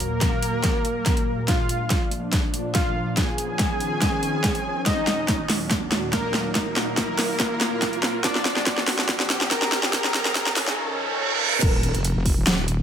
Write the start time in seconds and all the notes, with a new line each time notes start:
Already playing: D#2 A#2 F#3 A#3 A#4, riser
0.00 closed hi-hat
0.21 kick, snare, closed hi-hat
0.42 closed hi-hat
0.64 kick, snare, closed hi-hat
0.85 closed hi-hat
1.06 kick, snare, closed hi-hat
1.17 closed hi-hat
1.48 F3 D4 F4 F5, kick, snare, closed hi-hat
1.69 closed hi-hat
1.90 kick, snare, closed hi-hat
2.11 closed hi-hat
2.33 kick, snare, closed hi-hat
2.54 closed hi-hat
2.75 F4 F5, kick, snare, closed hi-hat
3.17 D#3 C#4 G#4 G#5, kick, snare, closed hi-hat
3.38 closed hi-hat
3.59 kick, snare, closed hi-hat
3.80 closed hi-hat
4.02 kick, snare, closed hi-hat
4.23 closed hi-hat
4.44 kick, snare, closed hi-hat
4.55 closed hi-hat
4.86 D#2 A#2 F#3 D#4 D#5, kick, snare, closed hi-hat
5.07 snare, closed hi-hat
5.28 kick, snare, closed hi-hat
5.50 snare, open hi-hat
5.71 kick, snare, closed hi-hat
5.92 snare, closed hi-hat
6.13 A#3 A#4, kick, snare, closed hi-hat
6.34 snare
6.55 A#3 A#4, kick, snare, closed hi-hat
6.76 snare, closed hi-hat
6.97 kick, snare, closed hi-hat
7.19 snare, open hi-hat
7.40 kick, snare, closed hi-hat
7.61 snare, closed hi-hat
7.82 kick, snare, closed hi-hat
7.93 closed hi-hat
8.03 snare
8.24 F3 D4 D5, kick, snare, closed hi-hat
8.35 snare
8.45 snare, closed hi-hat
8.56 snare
8.66 kick, snare, closed hi-hat
8.78 snare
8.88 snare, open hi-hat
8.99 snare
9.09 kick, snare, closed hi-hat
9.20 snare
9.30 snare, closed hi-hat
9.41 snare
9.51 A#4 A#5, kick, snare, closed hi-hat
9.62 snare
9.72 snare
9.83 snare
9.93 D#3 C#4 A#4 A#5, kick, snare, closed hi-hat
10.04 snare
10.14 snare, closed hi-hat
10.25 snare, closed hi-hat
10.35 kick, snare, closed hi-hat
10.46 snare
10.56 snare, open hi-hat
10.68 snare
10.78 reverse cymbal
11.62 D#1 D#3 A#3 F#4, kick, closed hi-hat, crash
11.83 closed hi-hat
11.95 F1, closed hi-hat
12.05 closed hi-hat
12.16 F1
12.26 kick, open hi-hat
12.37 D#1
12.47 snare, closed hi-hat
12.68 closed hi-hat